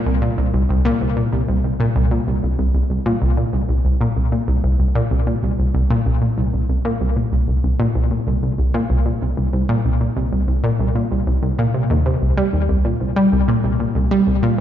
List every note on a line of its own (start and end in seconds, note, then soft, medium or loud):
0.06 0.21 C2 medium
0.22 0.32 A#2 medium
0.37 0.48 C2 medium
0.54 0.64 C2 medium
0.69 0.79 C2 medium
0.85 0.91 A#2 loud
1.01 1.16 C2 medium
1.17 1.27 A#2 medium
1.32 1.42 C2 medium
1.48 1.58 C2 medium
1.64 1.74 C2 medium
1.80 1.86 A#2 loud
1.96 2.11 C2 medium
2.11 2.21 A#2 medium
2.27 2.37 C2 medium
2.43 2.53 C2 medium
2.59 2.69 C2 medium
2.74 2.85 C2 medium
2.90 3.00 C2 medium
3.06 3.12 A#2 loud
3.22 3.37 C2 medium
3.37 3.48 A#2 medium
3.53 3.63 C2 medium
3.69 3.79 C2 medium
3.85 3.95 C2 medium
4.01 4.07 A#2 medium
4.16 4.31 C2 medium
4.32 4.42 A#2 medium
4.48 4.58 C2 medium
4.64 4.74 C2 medium
4.79 4.90 C2 medium
4.95 5.01 A#2 medium
5.11 5.26 C2 medium
5.27 5.37 A#2 medium
5.43 5.53 C2 medium
5.59 5.69 C2 medium
5.74 5.85 C2 medium
5.90 5.96 A#2 loud
6.06 6.21 C2 medium
6.22 6.32 A#2 medium
6.38 6.48 C2 medium
6.53 6.63 C2 medium
6.69 6.79 C2 medium
6.85 6.91 A#2 loud
7.01 7.16 C2 medium
7.16 7.27 A#2 medium
7.32 7.42 C2 medium
7.48 7.58 C2 medium
7.64 7.74 C2 medium
7.80 7.86 A#2 loud
7.95 8.10 C2 medium
8.11 8.21 A#2 medium
8.27 8.37 C2 medium
8.43 8.53 C2 medium
8.58 8.69 C2 medium
8.74 8.80 A#2 loud
8.90 9.05 C2 medium
9.06 9.16 A#2 medium
9.22 9.32 C2 medium
9.37 9.48 C2 medium
9.53 9.63 C2 medium
9.69 9.75 A#2 loud
9.85 10.00 C2 medium
10.01 10.11 A#2 medium
10.16 10.27 C2 medium
10.32 10.42 C2 medium
10.48 10.58 C2 medium
10.64 10.70 A#2 loud
10.79 10.95 C2 medium
10.95 11.06 A#2 medium
11.11 11.21 C2 medium
11.27 11.37 C2 medium
11.43 11.53 C2 medium
11.59 11.65 A#2 loud
11.74 11.84 C3 medium
11.90 11.96 D#2 loud
12.06 12.21 C3 medium
12.22 12.32 C2 medium
12.37 12.44 G3 loud
12.53 12.68 D#2 medium
12.69 12.84 C2 medium
12.85 12.95 A#2 medium
13.00 13.11 C2 medium
13.16 13.27 G3 loud
13.32 13.42 C2 medium
13.48 13.54 A#2 loud
13.64 13.79 C2 medium
13.80 13.90 A#2 medium
13.95 14.06 C2 medium
14.11 14.21 G3 loud
14.27 14.37 C2 medium
14.43 14.49 A#2 loud